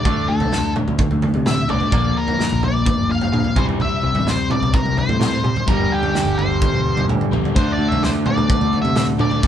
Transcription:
Already playing: D5
0.04 D2 D3 A3 D4, kick, floor tom
0.28 D2 D3 A3 A4
0.40 C2, floor tom
0.52 D3 A3, snare, floor tom
0.76 D3 A3, floor tom, mid tom
0.88 D2, mid tom
0.99 D3 A3, kick, floor tom
1.11 D2, floor tom
1.22 D3 A3, floor tom
1.34 C3, floor tom
1.46 D3 A3 E5, snare, mid tom
1.68 C2 D3 A3 D4 D5, mid tom
1.80 floor tom
1.91 A#1 A#2 D3 F3 A#3, kick, floor tom
2.16 A#2 D3 A#4
2.28 floor tom
2.39 A#2 D3, snare, floor tom
2.52 A#1
2.63 A#2 D3 D5, floor tom
2.86 A#2 D3, kick, floor tom
2.98 G1
3.10 A#2 D3 F5
3.21 G1, floor tom
3.33 G2 A#2 D3, mid tom
3.44 floor tom
3.56 C2 C3 E3 G3 C4 C5, kick, mid tom
3.69 floor tom
3.80 C2 C3 E3 E5, floor tom
4.03 C2 C3 E3
4.14 A1, floor tom
4.27 C3 E3 C5, snare, floor tom
4.50 C3 E3 D5, floor tom, mid tom
4.61 C2, mid tom
4.74 C3 E3 A#4, kick, floor tom
4.85 C2, floor tom
4.97 C3 E3 C5, floor tom
5.09 A2, floor tom
5.19 C3 E3 G3 C4, snare, mid tom
5.44 C3 E3, mid tom
5.56 floor tom
5.66 G1 G2 D3 G3 A#4, kick, floor tom
5.92 G4
6.03 floor tom
6.15 snare, floor tom
6.26 G1
6.38 C5, floor tom
6.62 kick, floor tom
6.73 E1
6.96 E1, floor tom
7.08 D2, mid tom
7.21 floor tom
7.31 A#1 G2 D3 G3, mid tom
7.45 floor tom
7.55 D2 D3 A3 D4 C5, kick, floor tom
7.72 D5
7.79 D2
7.88 C2 E5, floor tom
8.03 C5, snare, floor tom
8.26 D5, floor tom, mid tom
8.38 D2, mid tom
8.50 kick, floor tom
8.61 D2, floor tom
8.73 floor tom
8.82 C3 E5, floor tom
8.96 E5, snare, mid tom
9.18 D3 A3 D4 D5, mid tom
9.31 floor tom
9.42 A#1 A#2 F3, kick, floor tom

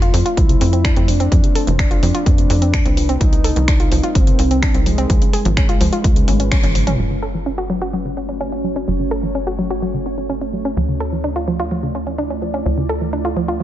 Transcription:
Already playing: F2 F3 A3 C4 F4 C5
0.02 F4, closed hi-hat
0.14 F2 F3, open hi-hat
0.26 F4, closed hi-hat
0.37 C2 F3 E4, kick, closed hi-hat
0.49 C3, closed hi-hat
0.61 F2 C4, open hi-hat
0.73 C4, closed hi-hat
0.85 D4, finger snap, kick, closed hi-hat
0.96 F2 C4, closed hi-hat
1.08 F3 D4, open hi-hat
1.20 C4, closed hi-hat
1.32 F2 F3 B4, kick, closed hi-hat
1.44 C3, closed hi-hat
1.55 A4, open hi-hat
1.67 F1 E3, closed hi-hat
1.79 D4, finger snap, kick, closed hi-hat
1.91 F4, closed hi-hat
2.03 F2 F3, open hi-hat
2.15 F4, closed hi-hat
2.26 F2 F3, kick, closed hi-hat
2.38 C3, closed hi-hat
2.50 F2 C4, open hi-hat
2.62 C4, closed hi-hat
2.73 D4, finger snap, kick, closed hi-hat
2.85 C2 C4, closed hi-hat
2.97 F3, open hi-hat
3.09 C4, closed hi-hat
3.21 C2 F3 G3 C4 D#4 A#4, kick, closed hi-hat
3.33 C3, closed hi-hat
3.44 A4, open hi-hat
3.56 C2 D#3, closed hi-hat
3.68 D4, finger snap, kick, closed hi-hat
3.80 F4, closed hi-hat
3.92 C2 F3, open hi-hat
4.03 F4, closed hi-hat
4.15 G1 F3 C4, kick, closed hi-hat
4.27 C3, closed hi-hat
4.39 C2 C4, open hi-hat
4.51 C4, closed hi-hat
4.62 D4, finger snap, kick, closed hi-hat
4.74 C2 C4, closed hi-hat
4.86 F3 G#3, open hi-hat
4.98 C4, closed hi-hat
5.10 C#2 F3 G#3 C#4 F4 B4, kick, closed hi-hat
5.22 C#3, closed hi-hat
5.33 G#4, open hi-hat
5.45 G#1 F3, closed hi-hat
5.57 G#3 C#4, finger snap, kick, closed hi-hat
5.69 F4, closed hi-hat
5.81 C#2 F3, open hi-hat
5.93 F4, closed hi-hat
6.04 C#2 F3, kick, closed hi-hat
6.16 C#3, closed hi-hat
6.28 G#1 C#4, open hi-hat, high tom
6.40 C#4, closed hi-hat
6.51 C#4, finger snap, kick, closed hi-hat, mid tom
6.63 G#1 C#4, closed hi-hat, mid tom
6.75 F3, open hi-hat
6.87 C#4, closed hi-hat, mid tom
6.99 F#1 F#3 A3 C#4 F#4 C#5
7.11 C#3
7.22 A4
7.34 E3
7.46 C#4
7.58 F#4
7.70 F#3
7.82 F#4
7.93 F#3
8.05 C#3
8.17 C#4
8.29 C#4
8.41 C#4
8.52 C#4
8.64 F#3
8.76 C#4
8.88 F#1 F#3
9.00 C#3
9.11 A4
9.23 E3
9.35 C#4
9.47 F#4
9.59 F#3
9.71 F#4
9.82 F#3
9.94 C#3
10.06 C#4
10.18 C#4
10.30 C#4
10.41 C#4
10.53 F#3
10.65 C#4
10.77 D2 F3 E4 F4 D5
10.89 C#3
11.00 A4
11.12 E3
11.24 D4
11.36 F4
11.48 F3
11.60 F4
11.71 F3
11.83 C#3
11.95 C#4
12.07 C#4
12.18 D4
12.30 C#4
12.42 F3
12.54 C#4
12.66 D2 F3
12.78 C#3
12.89 A4
13.01 E3
13.13 D4
13.25 F4
13.37 F3
13.48 F4

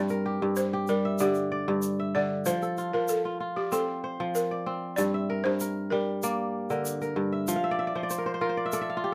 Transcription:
Already playing: G2 C4 C5 D5
0.09 A#4, shaker
0.26 G4
0.42 G2
0.56 C5, shaker
0.73 G4
0.87 G3 A#4, shaker
1.05 E5
1.19 D3 G4 D5, shaker
1.34 shaker
1.52 D5
1.68 G2
1.82 shaker
1.99 E5
2.15 D3 D5
2.45 F3 C5, shaker
2.62 A4, shaker
2.78 F4, shaker
2.93 F3 A#4
3.08 A4, shaker
3.25 F4
3.40 F4
3.56 G4 D5
3.72 C4 A4 C5, shaker
4.04 C5
4.20 F3
4.35 A#4, shaker
4.51 D5
4.66 C4
4.96 G2 D5, shaker
5.14 E5
5.30 A#4
5.44 G2 C5
5.60 A#4, shaker
5.90 G3 A#4
6.23 A#3 D5, shaker
6.70 D3 A#4, shaker
6.85 shaker
7.02 A#4, shaker
7.16 G2
7.32 E5
7.48 F3, shaker
7.56 F5
7.64 E5
7.71 D5
7.79 E5
7.87 D5
7.95 F3 C5
8.03 D5
8.10 C5, shaker
8.18 A#4
8.26 C5
8.34 C5
8.41 F4 A#4
8.49 C5
8.57 D5
8.66 E5
8.72 A4 D5, shaker
8.81 E5
8.90 F5
8.97 F4
9.04 G4

